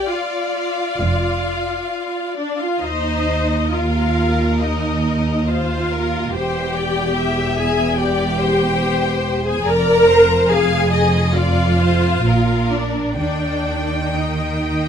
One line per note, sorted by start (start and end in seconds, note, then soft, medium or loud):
0.00 2.37 D5 medium
0.09 2.38 F4 medium
0.09 2.37 F5 medium
1.00 1.73 F1 medium
1.00 1.73 F2 medium
2.36 2.60 D4 medium
2.36 2.59 D5 medium
2.59 2.83 F4 medium
2.59 2.82 F5 medium
2.81 6.31 D#2 medium
2.81 3.72 D#4 medium
2.81 3.67 C5 medium
2.81 3.71 D#5 medium
3.72 4.60 F4 medium
3.72 5.48 A#4 soft
3.72 4.60 F5 medium
4.60 5.48 D#4 medium
4.60 5.48 D#5 medium
5.48 6.34 F4 medium
5.48 5.92 C5 medium
5.48 6.35 F5 medium
5.92 6.35 A#4 medium
6.34 9.67 E1 medium
6.34 9.67 E2 soft
6.34 7.59 G4 medium
6.34 6.76 C5 medium
6.34 7.56 G5 medium
6.76 7.18 D5 soft
7.18 7.98 E5 medium
7.57 8.00 G#4 medium
7.57 7.98 G#5 medium
7.98 9.45 G4 medium
7.98 8.40 D5 medium
7.98 9.45 G5 medium
8.39 9.66 C5 medium
9.45 9.66 G#4 medium
9.45 9.66 G#5 medium
9.65 12.21 F1 medium
9.65 12.20 F2 medium
9.65 10.51 A#4 loud
9.65 10.07 D5 medium
9.65 10.50 A#5 medium
10.08 10.50 C5 medium
10.49 11.35 G#4 medium
10.49 10.92 F5 medium
10.49 11.34 G#5 medium
10.92 11.34 D#5 medium
11.34 12.72 F4 medium
11.34 11.79 D5 medium
11.34 12.68 F5 medium
11.80 12.25 C5 medium
12.24 13.17 A#1 soft
12.24 13.17 A#2 medium
12.24 13.20 A#4 soft
12.72 13.18 D4 medium
12.72 13.18 D5 medium
13.18 14.88 D#2 soft
13.18 14.88 D#3 soft
13.18 14.13 D4 medium
13.18 14.13 D5 medium
13.18 14.88 G5 soft
14.15 14.88 D#4 soft
14.15 14.88 D#5 soft